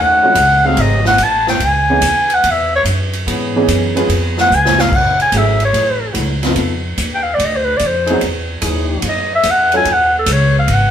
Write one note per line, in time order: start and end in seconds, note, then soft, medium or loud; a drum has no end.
0.00 0.34 D#2 medium
0.00 0.59 D#3 medium
0.00 0.58 A3 medium
0.00 0.58 C#4 medium
0.00 0.58 F#4 loud
0.00 0.67 F#5 loud
0.23 0.35 F3 medium
0.23 0.35 A3 medium
0.23 0.36 C#4 medium
0.23 0.35 D#4 medium
0.23 0.35 F#4 medium
0.35 0.76 C#2 loud
0.35 kick soft
0.35 hi-hat pedal medium
0.35 ride medium
0.64 1.17 F#3 loud
0.64 0.77 F#3 medium
0.64 0.77 A3 soft
0.64 1.17 A3 loud
0.64 1.16 C4 loud
0.64 0.77 C4 medium
0.64 0.77 D#4 medium
0.64 0.77 F#4 medium
0.64 1.17 G#4 loud
0.64 0.82 F5 loud
0.77 1.18 G#1 medium
0.77 1.06 D#5 medium
0.77 kick soft
0.77 ride medium
1.05 1.24 F#5 loud
1.05 snare medium
1.18 1.59 A1 medium
1.18 kick soft
1.18 hi-hat pedal medium
1.18 ride medium
1.23 1.49 A5 loud
1.47 1.67 G5 loud
1.47 snare medium
1.60 2.00 C#2 medium
1.60 kick soft
1.60 ride medium
1.65 2.36 G#5 loud
1.90 2.01 E3 medium
1.90 2.01 B3 medium
1.90 2.02 C#4 medium
1.90 2.02 D#4 medium
1.90 2.02 G#4 medium
2.02 2.42 D#2 loud
2.02 kick soft
2.02 hi-hat pedal medium
2.02 ride medium
2.30 ride medium
2.34 2.52 F#5 loud
2.43 2.84 E2 medium
2.43 kick soft
2.43 ride medium
2.50 2.75 E5 medium
2.75 2.82 C#5 loud
2.84 3.25 F#2 medium
2.84 kick soft
2.84 hi-hat pedal medium
2.84 ride medium
3.13 ride soft
3.26 3.67 G#2 medium
3.26 3.90 E3 medium
3.26 3.90 B3 medium
3.26 3.90 C#4 medium
3.26 3.90 G#4 loud
3.26 kick soft
3.26 ride medium
3.56 3.94 E3 medium
3.56 3.94 B3 medium
3.56 3.94 C#4 medium
3.56 3.94 D#4 medium
3.56 3.94 G#4 medium
3.68 4.08 F#2 loud
3.68 kick soft
3.68 hi-hat pedal medium
3.68 ride medium
3.95 4.48 F3 loud
3.95 4.08 G#3 medium
3.95 4.47 B3 medium
3.95 4.08 B3 medium
3.95 4.48 C#4 medium
3.95 4.08 C#4 medium
3.95 4.08 F4 medium
3.95 4.48 G#4 loud
3.95 4.08 G#4 medium
3.95 ride medium
4.09 4.49 F2 medium
4.09 kick soft
4.09 ride medium
4.38 4.56 F#5 loud
4.38 snare medium
4.50 4.90 C#2 medium
4.50 hi-hat pedal medium
4.54 4.82 G#5 loud
4.65 snare medium
4.79 4.97 F5 loud
4.79 snare medium
4.91 5.32 F#1 medium
4.91 kick medium
4.91 crash medium
4.96 5.21 F#5 medium
5.20 5.39 G#5 loud
5.20 ride soft
5.32 5.72 G#1 medium
5.32 5.58 F#3 medium
5.32 5.59 A3 medium
5.32 5.59 C#4 medium
5.32 5.59 E4 medium
5.32 5.59 G#4 medium
5.32 kick soft
5.32 hi-hat pedal medium
5.32 ride medium
5.37 5.63 E5 medium
5.60 ride soft
5.65 6.14 C#5 medium
5.73 6.14 A1 medium
5.73 5.92 F#3 medium
5.73 5.92 A3 medium
5.73 5.92 E4 medium
5.73 5.92 G#4 medium
5.73 kick soft
5.73 ride medium
6.14 6.55 C#2 medium
6.14 6.34 F#3 medium
6.14 6.33 A3 medium
6.14 6.33 E4 medium
6.14 6.33 F#4 medium
6.14 kick soft
6.14 hi-hat pedal soft
6.14 ride medium
6.43 6.56 F3 medium
6.43 6.56 B3 medium
6.43 6.56 C4 medium
6.43 6.56 D#4 medium
6.43 6.57 F4 medium
6.43 snare soft
6.43 ride soft
6.55 6.96 F2 medium
6.55 6.75 F3 medium
6.55 6.75 B3 medium
6.55 6.75 D#4 medium
6.55 6.74 A4 medium
6.55 kick soft
6.55 ride medium
6.98 7.38 D#2 loud
6.98 kick soft
6.98 hi-hat pedal medium
6.98 ride medium
7.15 7.24 G5 loud
7.23 7.36 F5 loud
7.34 7.47 D5 medium
7.39 7.79 D2 medium
7.39 kick soft
7.39 ride medium
7.45 7.57 D#5 loud
7.56 7.66 C5 medium
7.65 7.78 B4 loud
7.77 8.20 F2 medium
7.77 7.88 D5 medium
7.77 kick soft
7.77 hi-hat pedal medium
7.77 ride medium
7.87 8.25 C5 loud
8.06 8.16 F#3 loud
8.06 8.16 D#4 medium
8.06 8.16 E4 medium
8.06 8.16 G#4 loud
8.06 ride medium
8.10 8.21 F#3 medium
8.10 8.21 B3 medium
8.10 8.22 D#4 medium
8.10 8.22 E4 medium
8.10 8.22 G#4 medium
8.21 8.61 E2 medium
8.21 kick soft
8.21 ride medium
8.61 9.02 D#2 loud
8.61 9.26 F#3 loud
8.61 9.26 D#4 medium
8.61 9.26 E4 medium
8.61 9.26 G#4 loud
8.61 kick soft
8.61 hi-hat pedal medium
8.61 ride medium
9.02 9.43 F#2 medium
9.02 kick soft
9.02 ride medium
9.08 9.32 D#5 medium
9.35 9.52 E5 loud
9.43 9.84 E2 medium
9.43 kick soft
9.43 hi-hat pedal medium
9.43 ride medium
9.50 9.76 F#5 loud
9.72 9.86 F#3 medium
9.72 9.86 C#4 medium
9.72 9.86 D#4 medium
9.72 9.86 F4 medium
9.72 9.86 A4 medium
9.72 ride soft
9.76 9.94 G#5 loud
9.85 10.26 D#2 medium
9.85 kick soft
9.85 ride medium
9.92 10.17 F#5 loud
10.18 10.34 A4 medium
10.26 10.67 C#2 loud
10.26 kick soft
10.26 hi-hat pedal medium
10.26 ride medium
10.32 10.58 C#5 medium
10.59 10.75 F5 medium
10.67 10.91 G#1 medium
10.67 kick soft
10.67 ride medium
10.73 10.91 F#5 medium